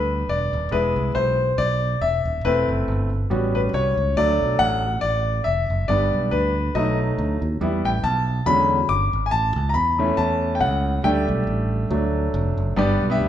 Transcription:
Already playing: fingered electric bass D2, grand piano G3 B3 D4 B4
0.29 fingered electric bass E1, grand piano D5
0.53 fingered electric bass D#1
0.71 fingered electric bass E1, grand piano G#3 B3 E4 B4
0.96 fingered electric bass C2
1.15 fingered electric bass B1, grand piano C5
1.58 fingered electric bass B1, grand piano D5
2.01 fingered electric bass E1, grand piano E5
2.25 fingered electric bass D#1
2.45 fingered electric bass E1, grand piano A3 C4 E4 B4
2.69 fingered electric bass F#1
2.88 fingered electric bass G1
3.30 fingered electric bass A1, grand piano G3 B3 C#4 F#4
3.55 grand piano B4
3.73 fingered electric bass C2, grand piano C#5
3.97 fingered electric bass C#2
4.17 fingered electric bass D2, grand piano F#3 A3 D4 D5
4.41 fingered electric bass B1
4.59 fingered electric bass A1, grand piano F#5
5.01 fingered electric bass A1, grand piano D5
5.44 fingered electric bass F1, grand piano E5
5.70 fingered electric bass F#1
5.88 fingered electric bass G1, grand piano G3 B3 D4 D5
6.13 fingered electric bass B1
6.31 fingered electric bass D2, grand piano B4
6.75 fingered electric bass B1, grand piano F#3 A3 D#4 D#5
7.18 fingered electric bass D2
7.42 fingered electric bass D#2
7.61 fingered electric bass E2, grand piano G3 B3 E4
7.85 fingered electric bass A1, grand piano G5
8.04 fingered electric bass B1, grand piano A5
8.46 fingered electric bass E2, grand piano D3 F#3 G#3 C#4 B5
8.89 fingered electric bass G1, grand piano D6
9.13 fingered electric bass G#1
9.26 grand piano G#5
9.31 fingered electric bass A1, grand piano A5
9.56 fingered electric bass C#2
9.69 grand piano A#5
9.74 fingered electric bass E2, grand piano B5
9.99 grand piano E3 A3 C#4
10.17 fingered electric bass E2, grand piano A5
10.55 grand piano G5
10.61 fingered electric bass C#2, grand piano F#5
11.04 fingered electric bass D2, grand piano G3 A3 D4 G5
11.28 fingered electric bass B1
11.47 fingered electric bass A1
11.90 fingered electric bass D2, grand piano F#3 A3 D4
12.34 fingered electric bass F1
12.57 fingered electric bass F#1
12.76 fingered electric bass G1, grand piano G2 B3 D4 G4 D5
13.01 fingered electric bass B1
13.10 grand piano B3 D4 G4 E5
13.20 fingered electric bass D2

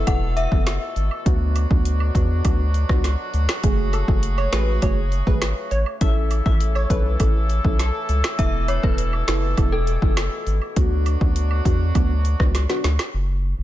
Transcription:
Already playing: woodwind section B2 E3 A3 E4 A4
0.07 analog synth bass E1, synth stab B3 E4 A4, synth bell F#5, kick, closed hi-hat, high woodblock
0.37 synth bell E5, closed hi-hat, cabasa
0.51 analog synth bass F#1, synth stab B3 E4 A4, kick
0.67 finger snap, snare, closed hi-hat, high woodblock
0.96 analog synth bass G#1, closed hi-hat, cabasa
1.11 high woodblock
1.25 analog synth bass D2, woodwind section D3 F#3 D4 F#4, synth stab B3 D4 F#4, kick, closed hi-hat
1.56 closed hi-hat, cabasa, high woodblock
1.70 analog synth bass D2, synth stab B3 D4 F#4, kick
1.85 closed hi-hat
2.00 high woodblock
2.15 analog synth bass E2, synth stab B3 D4 F#4, kick, closed hi-hat, cabasa
2.44 analog synth bass D2, synth stab B3 D4 F#4, kick, closed hi-hat, high woodblock
2.74 closed hi-hat, cabasa
2.89 analog synth bass C#2, synth stab B3 D4 F#4, kick, cross-stick
3.04 snare, closed hi-hat, high woodblock
3.34 analog synth bass D2, closed hi-hat, cabasa
3.49 finger snap, snare, high woodblock
3.63 analog synth bass F#1, woodwind section C#3 A3 G#4, synth stab A3 F#4 G#4, kick, closed hi-hat
3.93 synth pluck A4, closed hi-hat, cabasa, high woodblock
4.08 analog synth bass F#1, synth stab A3 F#4 G#4, kick
4.23 closed hi-hat
4.38 synth pluck C#5, high woodblock
4.53 analog synth bass A1, synth stab A3 F#4 G#4, synth pluck B4, finger snap, snare, closed hi-hat, cabasa
4.82 analog synth bass F#1, synth stab A3 F#4 G#4, synth pluck C#5, kick, closed hi-hat, high woodblock
5.12 closed hi-hat, cabasa
5.27 analog synth bass G#1, synth stab A3 F#4 G#4, synth pluck B4, kick
5.42 finger snap, snare, closed hi-hat, high woodblock
5.71 analog synth bass A1, synth pluck C#5, closed hi-hat, cabasa
5.86 high woodblock
6.01 analog synth bass A1, woodwind section E3 E4 A4, synth stab C#4 E4 A4, synth pluck E5, kick, closed hi-hat
6.31 closed hi-hat, cabasa, high woodblock
6.46 analog synth bass A1, synth stab C#4 E4 A4, synth pluck E5, kick
6.61 closed hi-hat
6.75 synth pluck C#5, high woodblock
6.90 analog synth bass B1, synth stab C#4 E4 A4, synth pluck B4, kick, closed hi-hat, cabasa
7.20 analog synth bass A1, synth stab C#4 E4 A4, kick, closed hi-hat, high woodblock
7.49 closed hi-hat, cabasa
7.64 analog synth bass B1, synth stab C#4 E4 A4, kick
7.79 synth pluck A4, snare, closed hi-hat, high woodblock
8.09 analog synth bass C#2, closed hi-hat, cabasa
8.24 finger snap, snare, high woodblock
8.39 analog synth bass E1, woodwind section B2, synth stab B3 E4 A4, synth bell E5, kick, closed hi-hat
8.68 synth bell C#5, closed hi-hat, cabasa, high woodblock
8.83 analog synth bass E1, synth stab B3 E4 A4, synth bell B4, kick
8.98 closed hi-hat
9.13 high woodblock
9.28 analog synth bass F#1, synth stab B3 E4 A4, finger snap, snare, closed hi-hat, cabasa
9.57 analog synth bass E1, synth stab B3 E4 A4, kick, closed hi-hat, high woodblock
9.72 synth bell A4
9.87 closed hi-hat, cabasa
10.02 analog synth bass F#1, synth stab B3 E4 A4, kick
10.17 finger snap, snare, closed hi-hat, high woodblock
10.47 analog synth bass G#1, closed hi-hat, cabasa
10.62 high woodblock
10.76 analog synth bass D2, woodwind section D3 F#3 D4 F#4, synth stab B3 D4 F#4, kick, closed hi-hat
11.06 closed hi-hat, cabasa, high woodblock
11.21 analog synth bass D2, synth stab B3 D4 F#4, kick
11.36 closed hi-hat
11.51 high woodblock
11.65 analog synth bass E2, synth stab B3 D4 F#4, kick, closed hi-hat, cabasa
11.95 analog synth bass D2, synth stab B3 D4 F#4, kick, closed hi-hat, high woodblock
12.25 closed hi-hat, cabasa
12.39 analog synth bass C#2, synth stab B3 D4 F#4, kick, cross-stick
12.55 snare, closed hi-hat, high woodblock
12.69 synth stab B3 D4 F#4, snare
12.84 analog synth bass D2, snare, closed hi-hat, cabasa
12.99 snare, high woodblock
13.14 analog synth bass F#1
13.59 analog synth bass F#1

